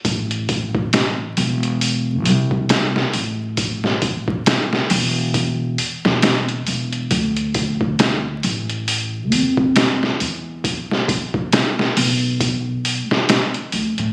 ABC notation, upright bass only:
X:1
M:4/4
L:1/16
Q:"Swing 16ths" 1/4=68
K:Am
V:1 name="Upright bass" clef=bass
A,,,6 E,,,4 C,,4 A,,,2- | A,,,4- A,,, z E,,,4 z E,,,3 E,,,2 | D,,6 A,,,4 F,,4 E,,2- | E,,4- E,, z B,,,4- B,,, E,,,3 D,, A,, |]